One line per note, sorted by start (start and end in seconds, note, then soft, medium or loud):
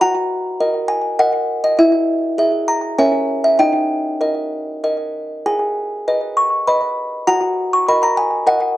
0.01 0.58 F#4 medium
0.01 0.58 F#5 soft
0.01 0.86 A#5 medium
0.60 1.15 A#4 soft
0.60 1.15 D#5 medium
0.88 1.17 G#5 medium
1.19 1.75 A#4 soft
1.19 1.63 D#5 medium
1.19 1.62 F#5 medium
1.64 1.79 D#5 medium
1.79 2.36 E4 medium
1.79 2.38 E5 medium
2.38 2.94 G#4 soft
2.38 2.95 E5 medium
2.68 2.97 A#5 loud
2.98 3.58 C#4 medium
2.98 3.56 A#4 soft
2.98 3.58 C#5 medium
2.98 3.43 E5 soft
2.98 3.42 G#5 medium
3.44 3.60 E5 medium
3.59 4.19 D#4 medium
3.59 4.19 D#5 soft
3.59 5.10 G5 medium
4.21 4.79 A#4 soft
4.21 4.79 D#5 soft
4.84 5.42 A#4 soft
4.84 5.42 D#5 soft
5.46 6.05 G#4 soft
5.46 6.34 G#5 medium
6.08 6.64 B4 soft
6.08 6.64 D#5 soft
6.37 6.66 C#6 medium
6.67 7.24 B4 soft
6.67 7.24 D#5 soft
6.67 7.25 B5 medium
7.27 7.86 F#4 medium
7.27 7.86 F#5 medium
7.27 7.71 A#5 medium
7.73 7.88 C#6 medium
7.88 8.44 A#4 soft
7.88 8.44 D#5 soft
7.88 8.03 B5 loud
8.03 8.18 A#5 loud
8.17 8.46 G#5 medium
8.47 8.77 A#4 soft
8.47 8.77 D#5 medium
8.47 8.77 F#5 medium